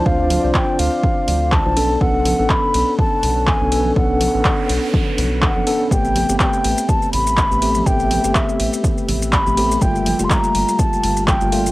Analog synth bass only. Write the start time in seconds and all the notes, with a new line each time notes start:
0.06 D2
0.44 C2
0.79 D2
1.28 D2
1.66 B1
2.01 B1
2.39 A1
2.74 B1
3.23 B1
3.61 B1
3.96 B1
4.34 A1
4.69 B1
5.18 B1
5.56 F#1
5.91 A1
6.29 G1
6.64 A1
7.13 A1
7.51 A1
7.86 A1
8.24 G1
8.60 A1
9.08 A1
9.46 A1
9.82 G1
10.20 F1
10.55 G1
11.03 G1
11.41 G1